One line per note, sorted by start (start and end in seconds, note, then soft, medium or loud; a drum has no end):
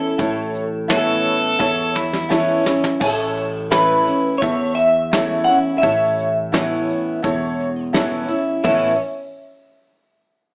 0.00 0.12 E2 medium
0.00 0.18 C#4 soft
0.00 0.18 E4 medium
0.00 2.26 A4 medium
0.18 1.26 A1 medium
0.18 1.53 A2 medium
0.18 0.62 E4 medium
0.18 0.63 A4 medium
0.18 0.63 C#5 medium
0.18 kick medium
0.18 closed hi-hat medium
0.55 closed hi-hat medium
0.88 1.56 E3 medium
0.88 1.56 B3 medium
0.88 1.56 C#4 medium
0.88 1.33 E4 medium
0.88 1.56 E4 medium
0.88 1.33 A4 medium
0.88 1.97 A4 loud
0.88 1.33 C#5 medium
0.88 snare loud
0.88 closed hi-hat medium
1.25 closed hi-hat medium
1.59 2.67 E2 medium
1.59 2.93 E2 medium
1.59 2.03 E4 medium
1.59 2.03 A4 medium
1.59 2.04 C#5 medium
1.59 kick loud
1.59 snare medium
1.95 2.32 E4 medium
1.95 snare medium
2.13 snare medium
2.29 2.64 E3 soft
2.29 2.64 B3 medium
2.29 2.81 C#4 medium
2.29 2.64 C#4 medium
2.29 2.73 E4 medium
2.29 2.64 E4 medium
2.29 2.74 A4 medium
2.29 2.74 C#5 medium
2.29 snare medium
2.65 3.00 C#4 medium
2.65 2.99 E4 medium
2.65 snare medium
2.84 snare medium
3.00 4.08 A1 medium
3.00 4.34 A2 medium
3.00 3.44 E4 medium
3.00 3.44 A4 medium
3.00 3.71 A4 medium
3.00 3.45 C#5 medium
3.00 kick loud
3.00 crash medium
3.36 closed hi-hat medium
3.71 4.05 E3 medium
3.71 4.05 A3 medium
3.71 4.05 C#4 medium
3.71 4.15 E4 medium
3.71 4.05 E4 medium
3.71 4.15 A4 medium
3.71 4.38 B4 medium
3.71 4.15 C#5 medium
3.71 snare loud
3.71 closed hi-hat medium
4.07 4.41 C#4 soft
4.07 4.40 E4 medium
4.07 closed hi-hat medium
4.38 5.49 E2 medium
4.38 4.85 E4 medium
4.38 4.75 C#5 medium
4.38 closed hi-hat medium
4.42 5.75 E2 medium
4.42 4.86 A4 medium
4.42 4.86 E5 medium
4.42 kick loud
4.75 5.44 E5 medium
4.75 closed hi-hat medium
5.12 5.46 E3 medium
5.12 5.46 A3 medium
5.12 5.47 C#4 medium
5.12 5.55 E4 medium
5.12 5.47 E4 medium
5.12 5.56 A4 medium
5.12 5.56 C#5 medium
5.12 snare loud
5.12 closed hi-hat medium
5.44 5.81 E4 medium
5.44 5.54 F#5 medium
5.48 5.82 C#4 medium
5.48 closed hi-hat medium
5.78 6.26 E4 medium
5.78 7.87 E5 medium
5.83 6.90 A1 medium
5.83 7.16 A2 medium
5.83 6.26 A4 medium
5.83 6.27 C#5 loud
5.83 kick loud
5.83 closed hi-hat medium
6.19 closed hi-hat medium
6.52 7.19 E3 medium
6.52 7.20 B3 medium
6.52 7.20 C#4 medium
6.52 6.96 E4 medium
6.52 7.20 E4 medium
6.52 6.96 A4 medium
6.52 6.97 C#5 medium
6.52 snare loud
6.52 closed hi-hat medium
6.89 closed hi-hat medium
7.23 8.31 E1 medium
7.23 8.57 E2 medium
7.23 7.67 E4 medium
7.23 7.67 A4 medium
7.23 7.67 C#5 loud
7.23 kick loud
7.23 closed hi-hat medium
7.60 closed hi-hat medium
7.93 8.28 E3 medium
7.93 8.28 B3 medium
7.93 8.28 C#4 medium
7.93 8.37 E4 medium
7.93 8.27 E4 medium
7.93 8.37 A4 medium
7.93 8.38 C#5 medium
7.93 snare loud
7.93 closed hi-hat medium
8.28 8.63 C#4 soft
8.28 8.62 E4 medium
8.28 closed hi-hat medium
8.63 8.97 A1 medium
8.63 8.92 A2 medium
8.63 8.92 E3 medium
8.63 8.92 B3 medium
8.63 8.97 C#4 medium
8.63 8.92 C#4 medium
8.63 8.97 E4 medium
8.63 8.93 E4 loud
8.63 8.96 A4 medium
8.63 8.96 C#5 medium
8.63 8.97 E5 medium
8.63 kick medium
8.63 floor tom medium
8.63 open hi-hat medium